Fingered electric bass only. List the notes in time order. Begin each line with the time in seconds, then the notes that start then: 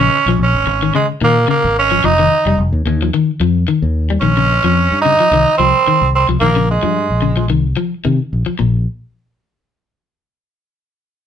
0.26 A#1
0.39 A#1
0.54 G#1
0.67 G#1
1.21 A#2
1.64 G#1
2.04 F1
2.46 F1
2.58 F1
2.73 D#2
2.86 D#2
3.40 F2
3.82 D#2
4.21 A#1
4.63 F2
4.91 G2
5.31 C2
5.59 C2
5.87 muted fingered electric bass stroke
6.01 C2
6.28 C2
6.41 A#1
6.83 G2
7.10 A#1
7.50 C2
8.05 C3
8.33 A#1
8.60 A#1